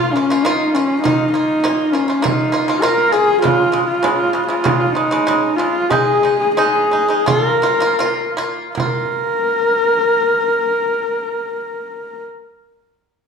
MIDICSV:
0, 0, Header, 1, 4, 480
1, 0, Start_track
1, 0, Tempo, 598802
1, 843, Time_signature, 4, 2, 24, 8
1, 3726, Tempo, 642398
1, 5166, Tempo, 710900
1, 6126, Tempo, 772201
1, 6606, Tempo, 794702
1, 9327, End_track
2, 0, Start_track
2, 0, Title_t, "Horsehead fiddle"
2, 0, Program_c, 0, 110
2, 0, Note_on_c, 0, 65, 106
2, 104, Note_on_c, 0, 61, 95
2, 116, Note_off_c, 0, 65, 0
2, 345, Note_on_c, 0, 63, 88
2, 357, Note_off_c, 0, 61, 0
2, 591, Note_on_c, 0, 61, 97
2, 603, Note_off_c, 0, 63, 0
2, 815, Note_off_c, 0, 61, 0
2, 819, Note_on_c, 0, 63, 99
2, 1053, Note_off_c, 0, 63, 0
2, 1062, Note_on_c, 0, 63, 104
2, 1537, Note_on_c, 0, 61, 86
2, 1549, Note_off_c, 0, 63, 0
2, 1783, Note_on_c, 0, 63, 92
2, 1795, Note_off_c, 0, 61, 0
2, 2257, Note_on_c, 0, 70, 96
2, 2269, Note_off_c, 0, 63, 0
2, 2501, Note_on_c, 0, 68, 106
2, 2513, Note_off_c, 0, 70, 0
2, 2742, Note_off_c, 0, 68, 0
2, 2747, Note_on_c, 0, 65, 102
2, 3088, Note_off_c, 0, 65, 0
2, 3104, Note_on_c, 0, 65, 87
2, 3333, Note_off_c, 0, 65, 0
2, 3338, Note_on_c, 0, 65, 87
2, 3575, Note_off_c, 0, 65, 0
2, 3585, Note_on_c, 0, 65, 97
2, 3934, Note_on_c, 0, 63, 102
2, 3945, Note_off_c, 0, 65, 0
2, 4409, Note_on_c, 0, 65, 94
2, 4420, Note_off_c, 0, 63, 0
2, 4659, Note_on_c, 0, 68, 99
2, 4670, Note_off_c, 0, 65, 0
2, 5027, Note_off_c, 0, 68, 0
2, 5031, Note_on_c, 0, 68, 87
2, 5146, Note_off_c, 0, 68, 0
2, 5151, Note_on_c, 0, 68, 91
2, 5631, Note_on_c, 0, 69, 89
2, 5642, Note_off_c, 0, 68, 0
2, 5760, Note_off_c, 0, 69, 0
2, 5760, Note_on_c, 0, 70, 89
2, 6361, Note_off_c, 0, 70, 0
2, 6606, Note_on_c, 0, 70, 94
2, 8687, Note_off_c, 0, 70, 0
2, 9327, End_track
3, 0, Start_track
3, 0, Title_t, "Pipa"
3, 0, Program_c, 1, 105
3, 0, Note_on_c, 1, 65, 109
3, 81, Note_off_c, 1, 65, 0
3, 125, Note_on_c, 1, 58, 70
3, 133, Note_on_c, 1, 65, 75
3, 221, Note_off_c, 1, 58, 0
3, 225, Note_off_c, 1, 65, 0
3, 242, Note_on_c, 1, 58, 78
3, 252, Note_on_c, 1, 65, 95
3, 339, Note_off_c, 1, 58, 0
3, 344, Note_off_c, 1, 65, 0
3, 359, Note_on_c, 1, 58, 95
3, 368, Note_on_c, 1, 65, 109
3, 553, Note_off_c, 1, 58, 0
3, 558, Note_off_c, 1, 65, 0
3, 598, Note_on_c, 1, 58, 81
3, 608, Note_on_c, 1, 65, 88
3, 793, Note_off_c, 1, 58, 0
3, 798, Note_off_c, 1, 65, 0
3, 831, Note_on_c, 1, 58, 85
3, 843, Note_on_c, 1, 65, 100
3, 1029, Note_off_c, 1, 58, 0
3, 1035, Note_off_c, 1, 65, 0
3, 1072, Note_on_c, 1, 58, 71
3, 1082, Note_on_c, 1, 65, 68
3, 1269, Note_off_c, 1, 58, 0
3, 1274, Note_off_c, 1, 65, 0
3, 1312, Note_on_c, 1, 58, 95
3, 1320, Note_on_c, 1, 65, 101
3, 1509, Note_off_c, 1, 58, 0
3, 1512, Note_off_c, 1, 65, 0
3, 1550, Note_on_c, 1, 58, 73
3, 1560, Note_on_c, 1, 65, 73
3, 1652, Note_off_c, 1, 58, 0
3, 1656, Note_off_c, 1, 65, 0
3, 1667, Note_on_c, 1, 58, 70
3, 1680, Note_on_c, 1, 65, 69
3, 1770, Note_off_c, 1, 58, 0
3, 1776, Note_off_c, 1, 65, 0
3, 1782, Note_on_c, 1, 58, 96
3, 1793, Note_on_c, 1, 65, 107
3, 1983, Note_off_c, 1, 58, 0
3, 1988, Note_off_c, 1, 65, 0
3, 2021, Note_on_c, 1, 58, 80
3, 2032, Note_on_c, 1, 65, 86
3, 2127, Note_off_c, 1, 58, 0
3, 2132, Note_off_c, 1, 65, 0
3, 2149, Note_on_c, 1, 58, 89
3, 2159, Note_on_c, 1, 65, 92
3, 2250, Note_off_c, 1, 58, 0
3, 2255, Note_off_c, 1, 65, 0
3, 2261, Note_on_c, 1, 58, 94
3, 2271, Note_on_c, 1, 65, 119
3, 2462, Note_off_c, 1, 58, 0
3, 2467, Note_off_c, 1, 65, 0
3, 2504, Note_on_c, 1, 58, 82
3, 2514, Note_on_c, 1, 65, 80
3, 2703, Note_off_c, 1, 58, 0
3, 2708, Note_off_c, 1, 65, 0
3, 2744, Note_on_c, 1, 49, 90
3, 2755, Note_on_c, 1, 56, 99
3, 2943, Note_off_c, 1, 49, 0
3, 2948, Note_off_c, 1, 56, 0
3, 2983, Note_on_c, 1, 49, 74
3, 2993, Note_on_c, 1, 56, 80
3, 3183, Note_off_c, 1, 49, 0
3, 3188, Note_off_c, 1, 56, 0
3, 3227, Note_on_c, 1, 49, 90
3, 3239, Note_on_c, 1, 56, 110
3, 3427, Note_off_c, 1, 49, 0
3, 3433, Note_off_c, 1, 56, 0
3, 3472, Note_on_c, 1, 49, 74
3, 3483, Note_on_c, 1, 56, 68
3, 3575, Note_off_c, 1, 49, 0
3, 3581, Note_off_c, 1, 56, 0
3, 3595, Note_on_c, 1, 49, 72
3, 3606, Note_on_c, 1, 56, 67
3, 3698, Note_off_c, 1, 49, 0
3, 3703, Note_off_c, 1, 56, 0
3, 3718, Note_on_c, 1, 49, 95
3, 3728, Note_on_c, 1, 56, 96
3, 3908, Note_off_c, 1, 49, 0
3, 3912, Note_off_c, 1, 56, 0
3, 3952, Note_on_c, 1, 49, 67
3, 3962, Note_on_c, 1, 56, 82
3, 4048, Note_off_c, 1, 49, 0
3, 4053, Note_off_c, 1, 56, 0
3, 4072, Note_on_c, 1, 49, 82
3, 4081, Note_on_c, 1, 56, 98
3, 4167, Note_off_c, 1, 49, 0
3, 4172, Note_off_c, 1, 56, 0
3, 4188, Note_on_c, 1, 49, 95
3, 4199, Note_on_c, 1, 56, 103
3, 4380, Note_off_c, 1, 49, 0
3, 4385, Note_off_c, 1, 56, 0
3, 4424, Note_on_c, 1, 49, 67
3, 4432, Note_on_c, 1, 56, 81
3, 4620, Note_off_c, 1, 49, 0
3, 4624, Note_off_c, 1, 56, 0
3, 4664, Note_on_c, 1, 56, 96
3, 4674, Note_on_c, 1, 63, 93
3, 4864, Note_off_c, 1, 56, 0
3, 4868, Note_off_c, 1, 63, 0
3, 4909, Note_on_c, 1, 56, 63
3, 4920, Note_on_c, 1, 63, 67
3, 5113, Note_off_c, 1, 56, 0
3, 5118, Note_off_c, 1, 63, 0
3, 5162, Note_on_c, 1, 56, 93
3, 5170, Note_on_c, 1, 63, 103
3, 5349, Note_off_c, 1, 56, 0
3, 5353, Note_off_c, 1, 63, 0
3, 5395, Note_on_c, 1, 56, 61
3, 5404, Note_on_c, 1, 63, 67
3, 5490, Note_off_c, 1, 56, 0
3, 5495, Note_off_c, 1, 63, 0
3, 5509, Note_on_c, 1, 56, 63
3, 5519, Note_on_c, 1, 63, 77
3, 5608, Note_off_c, 1, 56, 0
3, 5612, Note_off_c, 1, 63, 0
3, 5630, Note_on_c, 1, 58, 98
3, 5638, Note_on_c, 1, 65, 103
3, 5826, Note_off_c, 1, 58, 0
3, 5830, Note_off_c, 1, 65, 0
3, 5871, Note_on_c, 1, 58, 73
3, 5879, Note_on_c, 1, 65, 86
3, 5973, Note_off_c, 1, 58, 0
3, 5977, Note_off_c, 1, 65, 0
3, 5995, Note_on_c, 1, 58, 85
3, 6004, Note_on_c, 1, 65, 95
3, 6099, Note_off_c, 1, 58, 0
3, 6103, Note_off_c, 1, 65, 0
3, 6121, Note_on_c, 1, 58, 90
3, 6129, Note_on_c, 1, 65, 109
3, 6312, Note_off_c, 1, 58, 0
3, 6316, Note_off_c, 1, 65, 0
3, 6357, Note_on_c, 1, 58, 90
3, 6365, Note_on_c, 1, 65, 99
3, 6554, Note_off_c, 1, 58, 0
3, 6558, Note_off_c, 1, 65, 0
3, 6593, Note_on_c, 1, 58, 71
3, 6623, Note_on_c, 1, 65, 87
3, 8674, Note_off_c, 1, 58, 0
3, 8703, Note_off_c, 1, 65, 0
3, 9327, End_track
4, 0, Start_track
4, 0, Title_t, "Frame drum"
4, 366, Note_on_c, 9, 64, 59
4, 446, Note_off_c, 9, 64, 0
4, 611, Note_on_c, 9, 64, 24
4, 691, Note_off_c, 9, 64, 0
4, 845, Note_on_c, 9, 64, 70
4, 925, Note_off_c, 9, 64, 0
4, 1090, Note_on_c, 9, 64, 26
4, 1170, Note_off_c, 9, 64, 0
4, 1325, Note_on_c, 9, 64, 67
4, 1405, Note_off_c, 9, 64, 0
4, 1570, Note_on_c, 9, 64, 21
4, 1651, Note_off_c, 9, 64, 0
4, 1806, Note_on_c, 9, 64, 73
4, 1886, Note_off_c, 9, 64, 0
4, 2280, Note_on_c, 9, 64, 69
4, 2360, Note_off_c, 9, 64, 0
4, 2530, Note_on_c, 9, 64, 32
4, 2610, Note_off_c, 9, 64, 0
4, 2766, Note_on_c, 9, 64, 90
4, 2847, Note_off_c, 9, 64, 0
4, 3009, Note_on_c, 9, 64, 28
4, 3089, Note_off_c, 9, 64, 0
4, 3242, Note_on_c, 9, 64, 77
4, 3323, Note_off_c, 9, 64, 0
4, 3492, Note_on_c, 9, 64, 24
4, 3572, Note_off_c, 9, 64, 0
4, 3731, Note_on_c, 9, 64, 86
4, 3806, Note_off_c, 9, 64, 0
4, 4198, Note_on_c, 9, 64, 68
4, 4273, Note_off_c, 9, 64, 0
4, 4432, Note_on_c, 9, 64, 26
4, 4507, Note_off_c, 9, 64, 0
4, 4668, Note_on_c, 9, 64, 79
4, 4742, Note_off_c, 9, 64, 0
4, 4918, Note_on_c, 9, 64, 27
4, 4993, Note_off_c, 9, 64, 0
4, 5166, Note_on_c, 9, 64, 65
4, 5233, Note_off_c, 9, 64, 0
4, 5404, Note_on_c, 9, 64, 23
4, 5471, Note_off_c, 9, 64, 0
4, 5638, Note_on_c, 9, 64, 88
4, 5706, Note_off_c, 9, 64, 0
4, 5883, Note_on_c, 9, 64, 61
4, 5951, Note_off_c, 9, 64, 0
4, 6133, Note_on_c, 9, 64, 65
4, 6196, Note_off_c, 9, 64, 0
4, 6366, Note_on_c, 9, 64, 24
4, 6428, Note_off_c, 9, 64, 0
4, 6609, Note_on_c, 9, 64, 76
4, 6669, Note_off_c, 9, 64, 0
4, 9327, End_track
0, 0, End_of_file